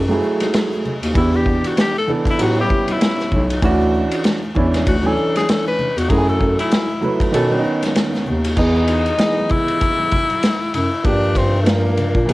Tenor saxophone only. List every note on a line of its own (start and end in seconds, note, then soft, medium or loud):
1.17 1.37 E4 medium
1.35 1.69 G4 medium
1.67 1.79 F#4 medium
1.80 1.96 G4 loud
1.98 2.11 A4 medium
2.30 2.40 E4 medium
2.42 2.57 F#4 loud
2.61 2.93 G4 loud
2.92 3.52 E4 medium
4.88 5.08 F#4 medium
5.06 5.36 A4 loud
5.36 5.51 G#4 loud
5.50 5.67 A4 loud
5.68 6.00 B4 loud
5.98 6.11 F#4 loud
6.10 6.28 G#4 loud
6.29 6.57 A4 medium
6.60 7.17 E4 medium
8.58 9.52 D#4 loud
9.51 10.74 E4 loud
10.75 11.07 E4 medium
11.06 11.39 D4 loud
11.37 11.61 C4 medium
11.62 11.70 A3 medium
11.69 12.33 A#3 medium